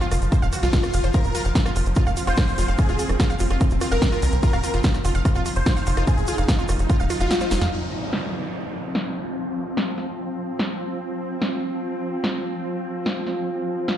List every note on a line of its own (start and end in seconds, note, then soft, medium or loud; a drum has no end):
0.00 7.71 F3 medium
0.00 1.16 F4 medium
0.00 0.08 F4 loud
0.00 closed hi-hat soft
0.00 shaker soft
0.11 0.18 F1 medium
0.11 0.21 F4 medium
0.11 cross-stick medium
0.11 open hi-hat loud
0.11 shaker medium
0.22 0.29 F1 medium
0.22 closed hi-hat medium
0.22 shaker soft
0.32 0.42 C5 medium
0.32 kick loud
0.32 closed hi-hat medium
0.32 shaker medium
0.42 0.49 D#1 medium
0.42 0.46 F5 loud
0.42 closed hi-hat soft
0.42 shaker soft
0.53 0.62 F#4 medium
0.53 cross-stick soft
0.53 open hi-hat loud
0.53 shaker medium
0.63 0.70 C2 medium
0.63 0.70 F4 medium
0.63 1.06 F4 loud
0.63 snare soft
0.63 closed hi-hat soft
0.63 shaker soft
0.73 0.77 F4 medium
0.73 kick loud
0.73 snare loud
0.73 closed hi-hat medium
0.73 shaker medium
0.83 cross-stick medium
0.83 closed hi-hat soft
0.83 shaker soft
0.93 1.01 F1 loud
0.93 1.01 F5 medium
0.93 open hi-hat loud
0.93 shaker loud
1.04 1.11 F1 medium
1.04 1.11 C5 medium
1.04 closed hi-hat medium
1.04 shaker soft
1.14 4.45 C4 medium
1.14 1.24 F4 medium
1.14 1.42 A#4 loud
1.14 kick loud
1.14 closed hi-hat medium
1.14 shaker medium
1.24 1.31 F1 medium
1.24 closed hi-hat soft
1.24 shaker soft
1.35 1.42 F4 loud
1.35 cross-stick soft
1.35 open hi-hat loud
1.35 shaker loud
1.45 1.52 F1 medium
1.45 1.49 F5 loud
1.45 closed hi-hat medium
1.45 shaker soft
1.55 1.62 F4 medium
1.55 kick loud
1.55 snare loud
1.55 closed hi-hat medium
1.55 shaker soft
1.66 1.72 F4 loud
1.66 cross-stick medium
1.66 snare soft
1.66 shaker soft
1.76 1.83 F1 medium
1.76 1.86 F4 medium
1.76 open hi-hat loud
1.76 shaker medium
1.86 1.93 F1 medium
1.86 closed hi-hat medium
1.86 shaker soft
1.95 2.03 F4 loud
1.95 kick loud
1.95 closed hi-hat medium
1.95 shaker medium
2.07 2.14 F1 medium
2.07 2.11 F5 loud
2.07 cross-stick soft
2.07 shaker soft
2.17 2.24 F4 medium
2.17 open hi-hat loud
2.17 shaker loud
2.27 2.34 F1 medium
2.27 2.34 F4 loud
2.27 2.70 C5 loud
2.27 closed hi-hat soft
2.27 shaker soft
2.37 2.47 F4 medium
2.37 kick loud
2.37 cross-stick medium
2.37 snare loud
2.37 closed hi-hat medium
2.37 shaker medium
2.48 closed hi-hat soft
2.48 shaker soft
2.58 2.65 F1 medium
2.58 2.65 F4 loud
2.58 open hi-hat loud
2.58 shaker loud
2.68 2.75 F1 medium
2.68 2.72 F5 loud
2.68 closed hi-hat soft
2.68 shaker soft
2.78 2.85 F4 medium
2.78 3.06 G#4 loud
2.78 kick loud
2.78 cross-stick soft
2.78 closed hi-hat medium
2.78 shaker medium
2.89 2.96 F1 medium
2.89 2.96 F4 loud
2.89 closed hi-hat soft
2.89 shaker soft
2.99 3.09 F4 medium
2.99 open hi-hat loud
2.99 shaker loud
3.09 3.16 F1 medium
3.09 cross-stick medium
3.09 closed hi-hat medium
3.09 shaker soft
3.20 3.27 F4 loud
3.20 kick loud
3.20 snare loud
3.20 closed hi-hat medium
3.20 shaker medium
3.30 3.34 F5 loud
3.30 closed hi-hat soft
3.30 shaker soft
3.39 3.47 F1 medium
3.39 3.47 F4 medium
3.39 open hi-hat loud
3.39 shaker medium
3.50 3.57 F1 medium
3.50 3.57 F4 loud
3.50 cross-stick soft
3.50 closed hi-hat medium
3.50 shaker soft
3.60 3.71 F4 medium
3.60 kick loud
3.60 closed hi-hat medium
3.60 shaker soft
3.70 3.78 D#1 medium
3.70 closed hi-hat soft
3.70 shaker soft
3.81 3.88 F4 loud
3.81 cross-stick medium
3.81 open hi-hat loud
3.81 shaker medium
3.91 3.99 F1 medium
3.91 4.35 A#4 loud
3.91 3.96 F5 loud
3.91 snare soft
3.91 closed hi-hat medium
3.91 shaker soft
4.02 4.09 F4 medium
4.02 kick loud
4.02 snare loud
4.02 closed hi-hat medium
4.02 shaker soft
4.12 4.19 F4 loud
4.12 closed hi-hat soft
4.12 shaker soft
4.22 4.29 C2 medium
4.22 4.32 F4 medium
4.22 cross-stick soft
4.22 open hi-hat loud
4.22 shaker loud
4.32 4.40 C2 medium
4.32 closed hi-hat medium
4.32 shaker soft
4.43 7.74 D#4 medium
4.43 4.50 F4 loud
4.43 4.70 A#4 loud
4.43 kick loud
4.43 closed hi-hat medium
4.43 shaker medium
4.53 4.60 F1 medium
4.53 4.57 F5 loud
4.53 cross-stick medium
4.53 closed hi-hat soft
4.53 shaker soft
4.63 4.70 F4 medium
4.63 open hi-hat loud
4.63 shaker loud
4.74 4.81 F1 medium
4.74 4.81 F4 loud
4.74 closed hi-hat medium
4.74 shaker soft
4.84 4.94 F4 medium
4.84 kick loud
4.84 snare loud
4.84 closed hi-hat medium
4.84 shaker medium
4.94 cross-stick soft
4.94 snare soft
4.94 shaker soft
5.05 5.12 F1 medium
5.05 5.12 F4 loud
5.05 open hi-hat medium
5.05 shaker loud
5.15 5.22 F1 medium
5.15 5.19 F5 loud
5.15 closed hi-hat medium
5.15 shaker soft
5.25 5.32 F4 medium
5.25 kick loud
5.25 cross-stick medium
5.25 closed hi-hat medium
5.25 shaker soft
5.35 5.42 F1 medium
5.35 5.42 F4 loud
5.35 shaker soft
5.46 5.55 F4 medium
5.46 open hi-hat loud
5.46 shaker medium
5.56 5.63 F1 medium
5.56 5.99 C5 loud
5.56 closed hi-hat medium
5.56 shaker soft
5.66 5.73 F4 loud
5.66 kick loud
5.66 cross-stick soft
5.66 snare loud
5.66 closed hi-hat medium
5.66 shaker soft
5.76 5.81 F5 loud
5.76 closed hi-hat soft
5.76 shaker soft
5.86 5.94 F1 loud
5.86 5.94 F4 medium
5.86 open hi-hat loud
5.86 shaker medium
5.97 6.04 F1 medium
5.97 6.04 F4 loud
5.97 cross-stick medium
5.97 closed hi-hat medium
5.97 shaker soft
6.07 6.17 F4 medium
6.07 6.35 G#4 loud
6.07 kick loud
6.07 closed hi-hat medium
6.07 shaker soft
6.18 6.25 F1 medium
6.18 closed hi-hat soft
6.18 shaker soft
6.27 6.35 F4 loud
6.27 open hi-hat loud
6.27 shaker medium
6.38 6.45 F1 medium
6.38 6.42 F5 loud
6.38 cross-stick soft
6.38 closed hi-hat medium
6.38 shaker soft
6.48 6.55 F4 medium
6.48 kick loud
6.48 snare loud
6.48 closed hi-hat medium
6.48 shaker medium
6.59 6.66 F4 loud
6.59 shaker soft
6.68 6.76 F1 loud
6.68 6.79 F4 medium
6.68 cross-stick medium
6.68 open hi-hat loud
6.68 shaker loud
6.79 6.86 F1 medium
6.79 closed hi-hat medium
6.79 shaker soft
6.90 6.96 F4 loud
6.90 kick loud
6.90 closed hi-hat medium
6.90 shaker medium
7.00 7.07 D#1 medium
7.00 7.04 F5 loud
7.00 closed hi-hat soft
7.00 shaker soft
7.10 7.19 F4 loud
7.10 cross-stick soft
7.10 open hi-hat loud
7.10 shaker medium
7.20 7.27 F1 medium
7.20 7.27 F4 medium
7.20 7.64 F4 loud
7.20 closed hi-hat medium
7.20 shaker soft
7.31 7.40 F#4 medium
7.31 snare loud
7.31 closed hi-hat medium
7.31 shaker soft
7.40 7.45 C5 medium
7.40 snare medium
7.40 closed hi-hat soft
7.40 shaker soft
7.51 7.58 F1 medium
7.51 7.61 D#4 medium
7.51 snare medium
7.51 open hi-hat loud
7.51 shaker medium
7.61 7.68 F2 medium
7.61 7.66 F5 medium
7.61 snare medium
7.61 closed hi-hat medium
7.61 shaker soft
7.72 13.97 F3 medium
7.72 13.97 C4 medium
7.72 13.97 F4 loud
7.72 downlifter medium
7.96 13.97 F5 medium
8.02 13.97 C5 medium
8.13 snare loud
8.95 snare loud
9.77 snare loud
9.98 snare soft
10.59 snare loud
11.42 snare loud
12.24 snare loud
13.06 snare loud
13.27 snare soft
13.88 snare loud